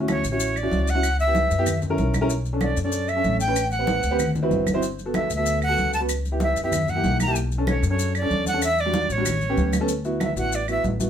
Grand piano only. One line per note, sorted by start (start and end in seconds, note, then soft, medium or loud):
0.00 0.23 C#4 medium
0.00 0.23 E4 medium
0.00 0.23 F#4 medium
0.32 0.54 C#4 medium
0.32 0.54 E4 medium
0.32 0.54 F#4 medium
0.63 0.86 C#4 medium
0.63 0.86 E4 medium
0.63 0.86 F#4 medium
0.95 1.03 C#4 medium
0.95 1.03 E4 medium
0.95 1.03 F#4 medium
1.27 1.49 B3 medium
1.27 1.49 E4 medium
1.27 1.49 G4 medium
1.58 1.66 B3 loud
1.58 1.67 E4 medium
1.58 1.67 G4 loud
1.90 2.12 C#4 medium
1.90 2.12 E4 medium
1.90 2.12 A#4 loud
2.21 2.29 C#4 loud
2.21 2.30 E4 medium
2.21 2.30 A#4 loud
2.53 2.75 C#4 medium
2.53 2.75 D4 medium
2.53 2.76 A4 loud
2.85 3.07 C#4 medium
2.85 3.07 D4 medium
2.85 3.07 A4 medium
3.16 3.38 C#4 medium
3.16 3.39 D4 medium
3.16 3.39 A4 medium
3.48 3.56 C#4 medium
3.48 3.56 D4 medium
3.48 3.56 B4 loud
3.79 4.02 C4 medium
3.79 4.02 G4 medium
3.79 4.02 B4 medium
4.11 4.19 C4 loud
4.11 4.19 G4 loud
4.11 4.19 B4 loud
4.42 4.65 C4 loud
4.42 4.65 E4 medium
4.42 4.65 F#4 medium
4.42 4.65 B4 loud
4.74 4.82 C4 loud
4.74 4.82 E4 loud
4.74 4.82 F#4 medium
4.74 4.82 C5 loud
5.06 5.28 B3 medium
5.06 5.28 F#4 medium
5.06 5.28 A4 medium
5.37 5.60 B3 medium
5.37 5.60 F#4 medium
5.37 5.60 A4 medium
5.68 5.91 B3 medium
5.68 5.91 F#4 medium
5.68 5.91 A4 medium
6.00 6.09 B3 medium
6.00 6.09 F#4 medium
6.00 6.09 B4 medium
6.32 6.54 B3 medium
6.32 6.54 E4 medium
6.32 6.55 G4 medium
6.63 6.72 B3 medium
6.63 6.72 E4 medium
6.63 6.72 G4 medium
6.95 7.18 A#3 medium
6.95 7.18 E4 medium
6.95 7.18 G4 medium
7.27 7.35 A#3 medium
7.27 7.35 E4 medium
7.27 7.36 G4 loud
7.58 7.81 C#4 medium
7.58 7.81 D4 medium
7.58 7.81 A4 medium
7.91 8.13 C#4 medium
7.91 8.13 D4 medium
7.91 8.13 A4 medium
8.22 8.44 C#4 medium
8.22 8.45 D4 medium
8.22 8.45 A4 medium
8.54 8.62 C#4 medium
8.54 8.62 D4 medium
8.54 8.62 A4 loud
8.86 9.08 G3 medium
8.86 9.08 D4 medium
8.86 9.08 F#4 medium
9.18 9.25 G3 medium
9.18 9.26 D4 medium
9.18 9.26 F#4 loud
9.49 9.71 B3 loud
9.49 9.72 C#4 medium
9.49 9.72 G4 loud
9.80 9.89 B3 loud
9.80 9.89 C#4 medium
9.80 9.89 A4 loud
10.05 10.27 B3 medium
10.05 10.27 E4 medium
10.05 10.27 F#4 loud
10.36 10.59 B3 medium
10.36 10.58 E4 medium
10.36 10.59 F#4 medium
10.68 10.90 B3 medium
10.68 10.90 E4 medium
10.68 10.90 F#4 medium
11.00 11.10 B3 medium
11.00 11.10 E4 medium
11.00 11.10 F#4 medium